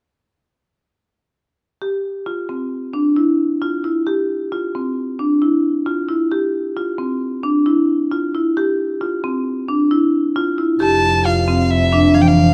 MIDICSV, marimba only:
0, 0, Header, 1, 2, 480
1, 0, Start_track
1, 0, Tempo, 449102
1, 1939, Time_signature, 5, 2, 24, 8
1, 13402, End_track
2, 0, Start_track
2, 0, Title_t, "Marimba"
2, 0, Program_c, 0, 12
2, 1941, Note_on_c, 0, 67, 54
2, 2335, Note_off_c, 0, 67, 0
2, 2419, Note_on_c, 0, 65, 53
2, 2617, Note_off_c, 0, 65, 0
2, 2662, Note_on_c, 0, 60, 42
2, 3056, Note_off_c, 0, 60, 0
2, 3137, Note_on_c, 0, 62, 52
2, 3336, Note_off_c, 0, 62, 0
2, 3383, Note_on_c, 0, 64, 54
2, 3777, Note_off_c, 0, 64, 0
2, 3866, Note_on_c, 0, 65, 55
2, 4063, Note_off_c, 0, 65, 0
2, 4107, Note_on_c, 0, 64, 48
2, 4304, Note_off_c, 0, 64, 0
2, 4346, Note_on_c, 0, 67, 57
2, 4741, Note_off_c, 0, 67, 0
2, 4833, Note_on_c, 0, 65, 56
2, 5028, Note_off_c, 0, 65, 0
2, 5077, Note_on_c, 0, 60, 51
2, 5467, Note_off_c, 0, 60, 0
2, 5549, Note_on_c, 0, 62, 51
2, 5746, Note_off_c, 0, 62, 0
2, 5791, Note_on_c, 0, 64, 51
2, 6184, Note_off_c, 0, 64, 0
2, 6265, Note_on_c, 0, 65, 59
2, 6464, Note_off_c, 0, 65, 0
2, 6506, Note_on_c, 0, 64, 53
2, 6704, Note_off_c, 0, 64, 0
2, 6750, Note_on_c, 0, 67, 56
2, 7144, Note_off_c, 0, 67, 0
2, 7232, Note_on_c, 0, 65, 52
2, 7429, Note_off_c, 0, 65, 0
2, 7464, Note_on_c, 0, 60, 49
2, 7860, Note_off_c, 0, 60, 0
2, 7945, Note_on_c, 0, 62, 58
2, 8144, Note_off_c, 0, 62, 0
2, 8188, Note_on_c, 0, 64, 58
2, 8582, Note_off_c, 0, 64, 0
2, 8673, Note_on_c, 0, 65, 57
2, 8869, Note_off_c, 0, 65, 0
2, 8921, Note_on_c, 0, 64, 55
2, 9113, Note_off_c, 0, 64, 0
2, 9160, Note_on_c, 0, 67, 65
2, 9549, Note_off_c, 0, 67, 0
2, 9631, Note_on_c, 0, 65, 57
2, 9827, Note_off_c, 0, 65, 0
2, 9874, Note_on_c, 0, 60, 57
2, 10265, Note_off_c, 0, 60, 0
2, 10351, Note_on_c, 0, 62, 57
2, 10546, Note_off_c, 0, 62, 0
2, 10593, Note_on_c, 0, 64, 56
2, 10983, Note_off_c, 0, 64, 0
2, 11072, Note_on_c, 0, 65, 68
2, 11266, Note_off_c, 0, 65, 0
2, 11309, Note_on_c, 0, 64, 54
2, 11504, Note_off_c, 0, 64, 0
2, 11544, Note_on_c, 0, 67, 66
2, 11936, Note_off_c, 0, 67, 0
2, 12029, Note_on_c, 0, 65, 64
2, 12222, Note_off_c, 0, 65, 0
2, 12267, Note_on_c, 0, 60, 59
2, 12657, Note_off_c, 0, 60, 0
2, 12745, Note_on_c, 0, 62, 58
2, 12939, Note_off_c, 0, 62, 0
2, 12981, Note_on_c, 0, 52, 61
2, 13371, Note_off_c, 0, 52, 0
2, 13402, End_track
0, 0, End_of_file